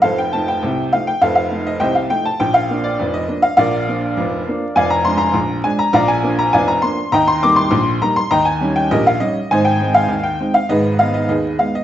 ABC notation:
X:1
M:2/4
L:1/16
Q:1/4=101
K:Bb
V:1 name="Upright piano"
[Acf] g a g3 f g | [Acf] f2 e [ceg] f g a | g f2 d2 e2 f | [Bdf]8 |
[K:Eb] [dfa] b c' b3 a b | [dfb] a2 b [dfa] b c'2 | [egb] c' d' c'3 b c' | [egb] a2 g [GBe] f e2 |
[cea] g2 f2 g2 f | [A_ce]2 f e [Ace]2 f e |]
V:2 name="Upright piano" clef=bass
[F,,,F,,]2 [F,A,E]2 [C,,C,]2 [F,A,E]2 | [F,,,F,,]2 [F,A,E]2 [C,,C,]2 [F,A,E]2 | [B,,,B,,]2 [F,B,D]2 [F,,,F,,]2 [F,B,D]2 | [B,,,B,,]2 [F,B,D]2 [F,,,F,,]2 [F,B,D]2 |
[K:Eb] [F,,,F,,]2 [F,A,D]2 [B,,,B,,]2 [F,A,D]2 | [B,,,B,,]2 [F,B,D]2 [F,,,F,,]2 [F,B,D]2 | [E,,E,]2 [G,B,E]2 [B,,,B,,]2 [G,B,E]2 | [E,,E,]2 [G,_DE]2 [B,,,B,,]2 [G,DE]2 |
[A,,,A,,]2 [A,CE]2 [E,,E,]2 [A,CE]2 | [A,,,A,,]2 [A,_CE]2 [E,,E,]2 [A,CE]2 |]